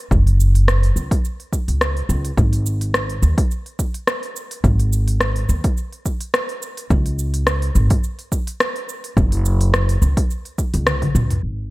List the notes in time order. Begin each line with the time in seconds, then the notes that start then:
0.11 F#1, kick, shaker
0.27 open hi-hat, shaker
0.40 shaker
0.55 open hi-hat, shaker
0.68 cross-stick, shaker
0.83 open hi-hat
0.96 C#2, shaker
1.11 kick, open hi-hat, shaker
1.25 shaker
1.40 open hi-hat
1.53 kick, shaker
1.68 C#2, open hi-hat, shaker
1.81 cross-stick, shaker
1.97 open hi-hat
2.09 C#2, shaker
2.25 open hi-hat, shaker
2.38 G#1, kick, shaker
2.53 open hi-hat, shaker
2.66 shaker
2.81 open hi-hat, shaker
2.94 cross-stick, shaker
3.10 open hi-hat
3.22 D#2, shaker
3.38 kick, open hi-hat, shaker
3.51 shaker
3.66 open hi-hat
3.79 kick, shaker
3.94 open hi-hat, shaker
4.07 cross-stick, shaker
4.23 open hi-hat
4.36 shaker
4.51 open hi-hat, shaker
4.64 G#1, kick, shaker
4.80 open hi-hat, shaker
4.93 shaker
5.08 open hi-hat, shaker
5.21 cross-stick, shaker
5.36 open hi-hat
5.49 D#2, shaker
5.64 kick, open hi-hat, shaker
5.77 shaker
5.92 open hi-hat
6.06 kick, shaker
6.21 open hi-hat, shaker
6.34 cross-stick, shaker
6.49 open hi-hat
6.62 shaker
6.77 open hi-hat, shaker
6.90 C#2, kick, shaker
7.06 open hi-hat, shaker
7.19 shaker
7.34 open hi-hat, shaker
7.47 cross-stick, shaker
7.62 open hi-hat
7.75 G#1, shaker
7.90 kick, open hi-hat, shaker
8.04 shaker
8.19 open hi-hat
8.32 kick, shaker
8.47 open hi-hat, shaker
8.60 cross-stick, shaker
8.76 open hi-hat
8.89 shaker
9.04 open hi-hat, shaker
9.17 F#1, kick, shaker
9.32 open hi-hat, shaker
9.46 shaker
9.61 open hi-hat, shaker
9.74 cross-stick, shaker
9.89 open hi-hat, shaker
10.02 C#2, shaker
10.17 kick, open hi-hat, shaker
10.30 shaker
10.45 open hi-hat, shaker
10.58 kick, shaker
10.74 C#2, open hi-hat, shaker
10.87 cross-stick, high tom, shaker
11.02 kick, open hi-hat, high tom
11.15 C#2, mid tom, shaker
11.31 mid tom, open hi-hat, shaker
11.43 G#1